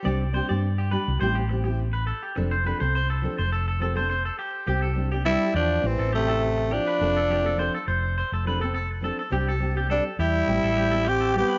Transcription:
<<
  \new Staff \with { instrumentName = "Clean electric guitar" } { \time 4/4 \key c \major \tempo 4 = 104 d''8 c''16 d''8 g'16 b'8 c''16 g'16 r8. b'16 a'16 g'16 | r16 c''16 b'16 c''16 c''16 a'8 c''16 a'16 a'16 a'16 c''16 c''16 a'16 g'8 | g'16 a'8 g'16 a'8 g'8 r16 a'16 g'16 a'16 r8 g'16 b'16~ | b'16 a'16 g'16 a'16 c''16 a'16 c''8 c''16 a'16 b'16 a'16 a'16 r16 a'16 a'16 |
g'16 a'8 g'16 a'8 g'8 r16 a'16 g'16 a'16 g'16 a'16 g'16 b'16 | }
  \new Staff \with { instrumentName = "Nylon-string guitar" } { \time 4/4 \key c \major <g c' d' g'>16 r16 <g c' d' g'>16 <c' d' g'>16 r8 <g d' g'>16 r16 <g c' e' g'>16 r16 <g c' g'>16 <c' e' g'>16 r4 | <f c' d' a'>16 r16 <f c' d' a'>16 <c' a'>16 r8 <f c' d' a'>16 r8. <f c' a'>16 <c' d' a'>16 r4 | <g c' g'>16 r16 <g c' d' g'>16 <c' d' g'>16 <g c' d' g'>16 r8. <c' e' g'>16 r16 <c' e' g'>16 <e' g'>16 r8 <c' e' g'>16 r16 | <c' d' a'>16 r16 <f c' d' a'>16 <c' d' a'>16 <f c' d' a'>16 r4 r16 <f c' d' a'>16 <c' a'>16 r8 <f c' d' a'>16 r16 |
<g c' d' g'>16 r16 <g c' d' g'>16 <c' d' g'>16 <g c' d' g'>16 r8. <g c' e' g'>16 r16 <g c' e' g'>16 <c' e' g'>16 r8 <g c' e' g'>16 r16 | }
  \new Staff \with { instrumentName = "Tenor saxophone" } { \time 4/4 \key c \major r1 | r1 | r4 e'8 d'8 c'8 a4 d'8~ | d'4. r2 r8 |
r4 d'8 e'4. g'8 g'8 | }
  \new Staff \with { instrumentName = "Trombone" } { \clef bass \time 4/4 \key c \major r1 | r1 | r4 g8 f8 e8 c4 f8~ | f4. r2 r8 |
r4 g8 g4. c'8 b8 | }
  \new Staff \with { instrumentName = "Fingered electric bass" } { \clef bass \time 4/4 \key c \major c,8. g,4 c,16 a,,2 | f,,8. c,4 f,,2 r16 | c,4. e,8 a,,16 a,,4.~ a,,16 | f,,4. f,,8. f,,4.~ f,,16 |
c,4. e,8 a,,16 a,,4.~ a,,16 | }
>>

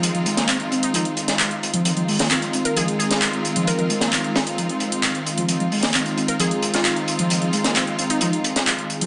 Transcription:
<<
  \new Staff \with { instrumentName = "Synth pluck" } { \time 4/4 \key f \minor \tempo 4 = 132 r4. r16 ees'16 ees'16 r4. r16 | r4. r16 bes'16 aes'16 r16 aes'16 r4 r16 | bes'16 bes'16 r2. r8 | r4. r16 bes'16 aes'16 r8 f'16 f'16 r8. |
r4. r16 ees'16 ees'16 r4. r16 | }
  \new Staff \with { instrumentName = "String section" } { \time 4/4 \key f \minor <aes c' ees' f'>1 | <aes c' ees' f'>1~ | <aes c' ees' f'>1 | <aes c' ees' f'>1~ |
<aes c' ees' f'>1 | }
  \new Staff \with { instrumentName = "Ambient pad" } { \time 4/4 \key f \minor << { f'1~ | f'1~ | f'1 | aes'1~ |
aes'1 | } \\ { <ees aes c'>1~ | <ees aes c'>1~ | <ees aes c'>1~ | <ees aes c'>1~ |
<ees aes c'>1 | } >> }
  \new Staff \with { instrumentName = "Analog synth lead" } { \clef bass \time 4/4 \key f \minor f16 f16 aes16 bes16 c'16 r16 c'8 f16 r4. f16 | f16 f16 aes16 bes16 c'16 r16 c'8 f16 r4. f16 | f16 f16 aes16 bes16 c'16 r16 c'8 f16 r4. f16 | f16 f16 aes16 bes16 c'16 r16 c'8 f16 r4. f16 |
f16 f16 aes16 bes16 c'16 r16 c'8 f16 r4. f16 | }
  \new DrumStaff \with { instrumentName = "Drums" } \drummode { \time 4/4 hh16 hh16 hh16 <hh sn>16 <hc hh>16 hh16 hh16 hh16 hh16 hh16 hh16 <hh sn>16 <hc hh>16 hh16 hh16 hh16 | hh16 hh16 hho16 <hh sn>16 <hc hh>16 hh16 hh16 hh16 hh16 hh16 hh16 <hh sn>16 <hc hh>16 hh16 hh16 hh16 | hh16 hh16 hh16 <hh sn>16 <hc hh>16 hh16 <hh sn>16 hh16 hh16 hh16 hh16 hh16 <hc hh>16 hh16 hh16 hh16 | hh16 hh16 hho16 <hh sn>16 <hc hh>16 hh16 hh16 hh16 hh16 hh16 hh16 <hh sn>16 <hc hh>16 hh16 hh16 hh16 |
hh16 hh16 hh16 <hh sn>16 <hc hh>16 hh16 hh16 hh16 hh16 hh16 hh16 <hh sn>16 <hc hh>16 hh16 hh16 hh16 | }
>>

